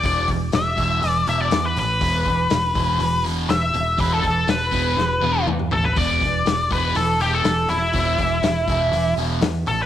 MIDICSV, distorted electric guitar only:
0, 0, Header, 1, 3, 480
1, 0, Start_track
1, 0, Tempo, 493827
1, 34, Time_signature, 4, 2, 24, 8
1, 9582, End_track
2, 0, Start_track
2, 0, Title_t, "Distorted electric guitar"
2, 0, Program_c, 0, 30
2, 34, Note_on_c, 0, 40, 73
2, 39, Note_on_c, 0, 47, 81
2, 42, Note_on_c, 0, 52, 89
2, 259, Note_off_c, 0, 52, 0
2, 274, Note_off_c, 0, 40, 0
2, 274, Note_off_c, 0, 47, 0
2, 746, Note_on_c, 0, 52, 110
2, 752, Note_on_c, 0, 47, 85
2, 763, Note_on_c, 0, 40, 78
2, 979, Note_off_c, 0, 40, 0
2, 986, Note_off_c, 0, 47, 0
2, 989, Note_off_c, 0, 52, 0
2, 1231, Note_on_c, 0, 52, 94
2, 1238, Note_on_c, 0, 47, 71
2, 1239, Note_on_c, 0, 40, 76
2, 1462, Note_off_c, 0, 40, 0
2, 1470, Note_off_c, 0, 47, 0
2, 1470, Note_off_c, 0, 52, 0
2, 1950, Note_on_c, 0, 40, 89
2, 1960, Note_on_c, 0, 47, 84
2, 1961, Note_on_c, 0, 52, 92
2, 2185, Note_off_c, 0, 52, 0
2, 2193, Note_off_c, 0, 40, 0
2, 2196, Note_off_c, 0, 47, 0
2, 2676, Note_on_c, 0, 52, 97
2, 2680, Note_on_c, 0, 47, 87
2, 2689, Note_on_c, 0, 40, 92
2, 2903, Note_off_c, 0, 40, 0
2, 2905, Note_off_c, 0, 47, 0
2, 2906, Note_off_c, 0, 52, 0
2, 3149, Note_on_c, 0, 52, 86
2, 3154, Note_on_c, 0, 47, 86
2, 3157, Note_on_c, 0, 40, 74
2, 3385, Note_off_c, 0, 40, 0
2, 3388, Note_off_c, 0, 47, 0
2, 3393, Note_off_c, 0, 52, 0
2, 3863, Note_on_c, 0, 40, 74
2, 3873, Note_on_c, 0, 47, 83
2, 3875, Note_on_c, 0, 52, 85
2, 4092, Note_off_c, 0, 52, 0
2, 4098, Note_off_c, 0, 47, 0
2, 4110, Note_off_c, 0, 40, 0
2, 4579, Note_on_c, 0, 52, 94
2, 4588, Note_on_c, 0, 47, 92
2, 4589, Note_on_c, 0, 40, 73
2, 4812, Note_off_c, 0, 40, 0
2, 4819, Note_off_c, 0, 47, 0
2, 4819, Note_off_c, 0, 52, 0
2, 5068, Note_on_c, 0, 52, 91
2, 5076, Note_on_c, 0, 40, 75
2, 5078, Note_on_c, 0, 47, 73
2, 5299, Note_off_c, 0, 40, 0
2, 5309, Note_off_c, 0, 47, 0
2, 5311, Note_off_c, 0, 52, 0
2, 5799, Note_on_c, 0, 40, 88
2, 5804, Note_on_c, 0, 47, 82
2, 5812, Note_on_c, 0, 52, 90
2, 6029, Note_off_c, 0, 52, 0
2, 6038, Note_off_c, 0, 40, 0
2, 6041, Note_off_c, 0, 47, 0
2, 6517, Note_on_c, 0, 52, 93
2, 6521, Note_on_c, 0, 47, 90
2, 6530, Note_on_c, 0, 40, 84
2, 6750, Note_off_c, 0, 40, 0
2, 6757, Note_off_c, 0, 52, 0
2, 6759, Note_off_c, 0, 47, 0
2, 7008, Note_on_c, 0, 52, 88
2, 7012, Note_on_c, 0, 47, 75
2, 7021, Note_on_c, 0, 40, 65
2, 7234, Note_off_c, 0, 40, 0
2, 7240, Note_off_c, 0, 47, 0
2, 7242, Note_off_c, 0, 52, 0
2, 7715, Note_on_c, 0, 40, 75
2, 7722, Note_on_c, 0, 47, 87
2, 7729, Note_on_c, 0, 52, 90
2, 7947, Note_off_c, 0, 52, 0
2, 7955, Note_off_c, 0, 40, 0
2, 7956, Note_off_c, 0, 47, 0
2, 8438, Note_on_c, 0, 52, 97
2, 8443, Note_on_c, 0, 47, 94
2, 8450, Note_on_c, 0, 40, 85
2, 8675, Note_off_c, 0, 40, 0
2, 8675, Note_off_c, 0, 52, 0
2, 8678, Note_off_c, 0, 47, 0
2, 8919, Note_on_c, 0, 52, 76
2, 8925, Note_on_c, 0, 47, 74
2, 8934, Note_on_c, 0, 40, 69
2, 9146, Note_off_c, 0, 40, 0
2, 9146, Note_off_c, 0, 47, 0
2, 9150, Note_off_c, 0, 52, 0
2, 9582, End_track
3, 0, Start_track
3, 0, Title_t, "Muted distorted electric guitar strokes"
3, 270, Note_on_c, 9, 29, 49
3, 368, Note_off_c, 9, 29, 0
3, 514, Note_on_c, 9, 29, 48
3, 611, Note_off_c, 9, 29, 0
3, 991, Note_on_c, 9, 29, 42
3, 1088, Note_off_c, 9, 29, 0
3, 1473, Note_on_c, 9, 29, 44
3, 1571, Note_off_c, 9, 29, 0
3, 1723, Note_on_c, 9, 29, 52
3, 1820, Note_off_c, 9, 29, 0
3, 2197, Note_on_c, 9, 29, 54
3, 2294, Note_off_c, 9, 29, 0
3, 2434, Note_on_c, 9, 29, 49
3, 2531, Note_off_c, 9, 29, 0
3, 2914, Note_on_c, 9, 29, 38
3, 3011, Note_off_c, 9, 29, 0
3, 3397, Note_on_c, 9, 29, 49
3, 3494, Note_off_c, 9, 29, 0
3, 3631, Note_on_c, 9, 29, 49
3, 3729, Note_off_c, 9, 29, 0
3, 4103, Note_on_c, 9, 29, 53
3, 4200, Note_off_c, 9, 29, 0
3, 4345, Note_on_c, 9, 29, 41
3, 4442, Note_off_c, 9, 29, 0
3, 4824, Note_on_c, 9, 29, 44
3, 4921, Note_off_c, 9, 29, 0
3, 5311, Note_on_c, 9, 29, 45
3, 5408, Note_off_c, 9, 29, 0
3, 5557, Note_on_c, 9, 29, 54
3, 5654, Note_off_c, 9, 29, 0
3, 6040, Note_on_c, 9, 29, 58
3, 6138, Note_off_c, 9, 29, 0
3, 6281, Note_on_c, 9, 29, 48
3, 6378, Note_off_c, 9, 29, 0
3, 6762, Note_on_c, 9, 29, 45
3, 6859, Note_off_c, 9, 29, 0
3, 7246, Note_on_c, 9, 29, 40
3, 7343, Note_off_c, 9, 29, 0
3, 7485, Note_on_c, 9, 29, 49
3, 7582, Note_off_c, 9, 29, 0
3, 7959, Note_on_c, 9, 29, 53
3, 8056, Note_off_c, 9, 29, 0
3, 8197, Note_on_c, 9, 29, 45
3, 8294, Note_off_c, 9, 29, 0
3, 8686, Note_on_c, 9, 29, 43
3, 8783, Note_off_c, 9, 29, 0
3, 9157, Note_on_c, 9, 29, 43
3, 9255, Note_off_c, 9, 29, 0
3, 9398, Note_on_c, 9, 29, 52
3, 9496, Note_off_c, 9, 29, 0
3, 9582, End_track
0, 0, End_of_file